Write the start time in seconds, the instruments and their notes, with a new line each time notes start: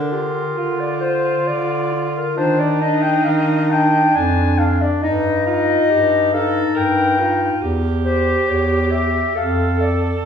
Already playing: bass clarinet D3, alto saxophone D4, clarinet A#4
0.11 clarinet F4, alto saxophone G4
0.57 bass clarinet D3, alto saxophone F4
0.80 clarinet D5
1.01 clarinet F4 C5
1.47 bass clarinet D3, clarinet D5
1.93 clarinet F4
2.17 clarinet A#4
2.37 bass clarinet D#3, clarinet D4 C5, alto saxophone D#4
2.59 clarinet D5
2.81 clarinet D4 D#5
3.02 clarinet G5
3.24 bass clarinet D#3, clarinet F5
3.69 clarinet D4 G5
4.14 bass clarinet F2, alto saxophone D4, clarinet D4 G#5
4.58 clarinet D4 F5
4.82 clarinet D5
5.02 bass clarinet G2, alto saxophone D#4, clarinet D#4 D#5
5.46 clarinet D#4, alto saxophone F4
5.90 bass clarinet G2, alto saxophone G4
6.33 clarinet D#4 F5, alto saxophone A4
6.76 bass clarinet G2, alto saxophone A#4, clarinet G5
7.19 clarinet D#4, alto saxophone F4
7.61 bass clarinet E2, alto saxophone G4
8.04 clarinet G4 C5
8.48 bass clarinet E2, clarinet C#5
8.91 clarinet G4 E5
9.35 bass clarinet F2, clarinet A4 F5, alto saxophone A4
9.79 clarinet A4 D5